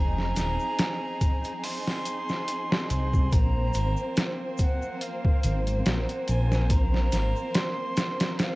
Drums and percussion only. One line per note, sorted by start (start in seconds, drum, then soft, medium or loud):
0.18 snare soft
0.36 snare soft
0.36 closed hi-hat medium
0.36 triangle medium
0.36 shaker loud
0.60 shaker medium
0.79 snare loud
0.79 closed hi-hat medium
0.79 shaker soft
1.21 kick medium
1.21 closed hi-hat medium
1.21 shaker medium
1.44 closed hi-hat soft
1.44 shaker soft
1.64 open hi-hat medium
1.64 shaker soft
1.87 snare medium
1.87 triangle medium
2.05 closed hi-hat medium
2.05 shaker medium
2.29 snare soft
2.29 shaker medium
2.48 closed hi-hat medium
2.48 shaker soft
2.72 snare loud
2.90 closed hi-hat medium
2.90 shaker medium
3.14 kick medium
3.14 shaker medium
3.32 kick loud
3.32 closed hi-hat medium
3.32 shaker soft
3.73 closed hi-hat medium
3.73 triangle medium
3.73 shaker medium
3.97 shaker medium
4.16 snare loud
4.16 closed hi-hat medium
4.16 shaker soft
4.58 kick medium
4.58 closed hi-hat medium
4.58 shaker medium
4.82 shaker medium
5.01 closed hi-hat medium
5.01 shaker soft
5.25 kick loud
5.43 closed hi-hat medium
5.43 shaker medium
5.67 closed hi-hat soft
5.67 shaker medium
5.85 snare loud
5.85 closed hi-hat medium
5.85 shaker soft
6.09 closed hi-hat soft
6.28 closed hi-hat medium
6.28 triangle medium
6.28 shaker medium
6.52 snare medium
6.52 shaker medium
6.70 kick loud
6.70 closed hi-hat medium
6.70 shaker soft
6.94 snare soft
7.12 snare soft
7.12 closed hi-hat medium
7.12 triangle medium
7.12 shaker medium
7.36 shaker soft
7.54 snare loud
7.54 closed hi-hat medium
7.54 shaker soft
7.97 snare loud
7.97 closed hi-hat medium
7.97 shaker medium
8.20 snare loud
8.20 closed hi-hat medium
8.20 shaker soft
8.39 snare loud
8.39 closed hi-hat medium
8.39 shaker soft